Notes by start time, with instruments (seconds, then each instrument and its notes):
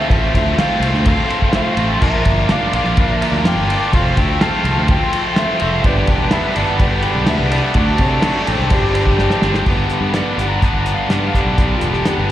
Already playing: distorted electric guitar A3 C4 F4, tonewheel organ F4 A4 C5
0.09 fingered electric bass A1, distorted electric guitar A2 F3, steel-string acoustic guitar A3 C4 F4 A4, electric slide guitar E5, kick, ride
0.34 fingered electric bass D2, steel-string acoustic guitar C4 F4 A4, electric slide guitar E5, kick, ride
0.57 distorted electric guitar F3, steel-string acoustic guitar A3 C4 F4, electric slide guitar F5, snare, ride
0.80 fingered electric bass C2, distorted electric guitar A3 C4 F4, ride
0.94 fingered electric bass D2, snare
1.05 distorted electric guitar A2 F3, steel-string acoustic guitar A3 C4 F4 A4, lead electric guitar C5, electric slide guitar F5, kick, ride
1.29 distorted electric guitar A3 C4 F4, ride
1.42 kick
1.53 steel-string acoustic guitar A3 C4 F4 A4, electric slide guitar F5, snare, ride
1.57 lead electric guitar C5
1.77 fingered electric bass A1, distorted electric guitar A3 C4 F4, ride
2.01 fingered electric bass A#1, steel-string acoustic guitar A#2 D3 F3 A#3 D4 A#4, tonewheel organ F4 A#4 D5, distorted electric guitar F4, lead electric guitar A#4, electric slide guitar E5, kick, crash
2.24 fingered electric bass G1, steel-string acoustic guitar F3 A#3 D4 A#4, kick, ride
2.48 steel-string acoustic guitar F3 A#3 D4 A#4, lead electric guitar D5, electric slide guitar F5, snare, ride
2.53 distorted electric guitar F4
2.73 fingered electric bass A#1, distorted electric guitar A#3 D4 F4, lead electric guitar D5, electric slide guitar F5, ride
2.84 fingered electric bass A#1, snare
2.97 steel-string acoustic guitar A#2 D3 F3 A#3 D4 A#4, distorted electric guitar F4, lead electric guitar A#4, electric slide guitar F5, kick, ride
3.10 electric slide guitar E5
3.21 distorted electric guitar A#3 D4 F4, ride
3.32 fingered electric bass D2
3.44 fingered electric bass F2, steel-string acoustic guitar D4, lead electric guitar D5, electric slide guitar G5, snare, ride
3.55 fingered electric bass G1
3.67 steel-string acoustic guitar F3 A#3 D4 A#4, distorted electric guitar F4, ride
3.92 fingered electric bass F1, steel-string acoustic guitar F3 C4 F4 A4, distorted electric guitar A3, tonewheel organ F#4 A#4 C#5, lead electric guitar C5, kick, ride
3.96 electric slide guitar F5
4.08 tonewheel organ F4 A4 C5
4.17 fingered electric bass D2, steel-string acoustic guitar C4 A4, lead electric guitar E5, electric slide guitar G5, kick, ride
4.40 steel-string acoustic guitar F3 C4 F4 A4, distorted electric guitar A3, lead electric guitar F5, electric slide guitar A5, snare, ride
4.64 fingered electric bass C2, distorted electric guitar A3 C4 F4, ride
4.77 fingered electric bass D2
4.87 steel-string acoustic guitar F3 C4 F4 A4, distorted electric guitar A3, lead electric guitar C5, electric slide guitar G5, kick, ride
5.11 distorted electric guitar A3 C4 F4, ride
5.36 steel-string acoustic guitar F3 C4 F4 A4, lead electric guitar C5, electric slide guitar E5, snare, ride
5.60 fingered electric bass F1, distorted electric guitar A3 C4 F4, lead electric guitar C5, electric slide guitar E5, ride
5.83 fingered electric bass G1, tonewheel organ D4 G4 B4, lead electric guitar G4, electric slide guitar D5, kick, ride
5.87 steel-string acoustic guitar G2 D3 G3 B3 D4 B4
6.07 fingered electric bass E1, steel-string acoustic guitar B4, kick, ride
6.12 steel-string acoustic guitar G3 B3
6.31 distorted electric guitar D3, steel-string acoustic guitar G3 B3, lead electric guitar B4, electric slide guitar E5, snare, ride
6.36 steel-string acoustic guitar D4 B4
6.55 fingered electric bass G1, distorted electric guitar G3 B3 D4, lead electric guitar A4, electric slide guitar D5, ride
6.68 fingered electric bass G1
6.79 steel-string acoustic guitar G2 D3 G3 B3 D4 B4, lead electric guitar G4, electric slide guitar D5, kick, ride
7.02 distorted electric guitar G3 B3 D4, ride
7.15 fingered electric bass B1
7.26 fingered electric bass D2, steel-string acoustic guitar G3 B3 D4 B4, lead electric guitar B4, electric slide guitar E5, snare, ride
7.40 fingered electric bass C2
7.52 distorted electric guitar G3 B3 D4, lead electric guitar A4, electric slide guitar D5, ride
7.74 fingered electric bass D2, steel-string acoustic guitar D3 A3 D4 F#4 A4, distorted electric guitar F#3, tonewheel organ D4 F#4 A4, electric slide guitar F#5, kick, ride
7.79 lead electric guitar D5
7.98 fingered electric bass C3, steel-string acoustic guitar F#4, lead electric guitar A4, electric slide guitar D5, kick, ride
8.21 distorted electric guitar D3 F#3, steel-string acoustic guitar A3, snare, ride
8.25 steel-string acoustic guitar D4 F#4 A4
8.47 fingered electric bass A1, distorted electric guitar F#3 A3, steel-string acoustic guitar D4 F#4 A4, lead electric guitar G4, ride
8.55 electric slide guitar C5
8.59 fingered electric bass C2, snare
8.70 fingered electric bass G1, steel-string acoustic guitar G2 D3 G3 C4 G4, tonewheel organ D4 G4 C5, lead electric guitar D4, kick, ride
8.74 steel-string acoustic guitar D4, electric slide guitar G4
8.93 distorted electric guitar G3 C4 D4, ride
9.07 kick
9.19 steel-string acoustic guitar G3 C4 D4 G4, snare
9.30 snare
9.41 fingered electric bass G1, distorted electric guitar G3 C4 D4, snare
9.54 snare
9.66 fingered electric bass G1, steel-string acoustic guitar G2 D3 G3 B3 D4 G4, kick, crash
9.90 closed hi-hat
10.01 fingered electric bass G2
10.14 steel-string acoustic guitar G2 D3 G3 B3 D4 G4, snare, closed hi-hat
10.37 fingered electric bass G1, distorted electric guitar G2 D3, steel-string acoustic guitar G4, closed hi-hat
10.41 steel-string acoustic guitar G3 B3 D4
10.48 electric slide guitar A#5
10.61 distorted electric guitar G2 D3 D4, steel-string acoustic guitar G3 B3 G4, kick, closed hi-hat
10.73 fingered electric bass G1
10.80 electric slide guitar A#5
10.86 closed hi-hat
10.94 electric slide guitar F5
11.09 fingered electric bass G2, steel-string acoustic guitar G2 D3 G3 B3 D4 G4, electric slide guitar D5, snare, closed hi-hat
11.27 electric slide guitar F5
11.34 distorted electric guitar G2 D3, steel-string acoustic guitar G3 B3 D4 G4, kick, closed hi-hat
11.41 electric slide guitar D5
11.45 fingered electric bass B1
11.58 steel-string acoustic guitar G2 D3 G3 B3 D4 G4, electric slide guitar G4, kick, closed hi-hat
11.77 electric slide guitar F4
11.81 fingered electric bass E1, closed hi-hat
11.93 electric slide guitar G4, snare
12.06 steel-string acoustic guitar G2 D3 G3 B3 D4 G4, snare, closed hi-hat
12.18 fingered electric bass G1